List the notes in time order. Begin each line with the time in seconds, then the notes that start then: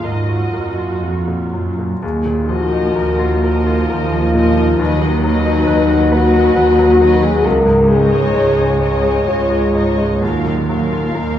Already playing: D#2 A#2 F#3 F4
0.04 G#2 F#4 A#4 D#5
0.29 F#4
0.54 F#2 A#4
0.78 F4
1.03 F2 F#4
1.28 A#2
1.53 F#2 F#3
1.79 A#2
2.03 D#2 G#4
2.25 A#2
2.49 F3 F#4 A#4 D#5
2.72 D#4
2.96 D#2 A#4
3.19 F4
3.44 F3 A#4 D#5
3.67 F4
3.89 D#2 F4 A#4
4.12 F3
4.34 A#2 F3 A#4 D#5
4.56 F3
4.78 D#2 F#3 D#4 B4 D#5
5.02 D#3
5.23 F#3 B4 D#5
5.45 D#4
5.67 D#2 B4
5.90 F#4
6.12 F#3 F#4 B4 D#5
6.33 F#4
6.55 D#2 F#4 B4
6.78 F#3
7.01 D#3 F#3 B4 D#5
7.22 F#3 G#4
7.44 C#2 A#4
7.66 G#2
7.88 G#3 G#4 C#5 D#5
8.11 D#4
8.33 C#2 C#5
8.56 G#4
8.80 G#3 C#5 D#5
9.03 G#4
9.27 C#2 F4 C#5
9.50 G#3
9.74 G#2 G#3 C#5 D#5
9.98 G#3
10.21 D#2 F#3 F4 A#4 F5
10.46 A#2
10.68 F#3 A#4 F5
10.92 F4
11.14 D#2 A#3 D#4 A#4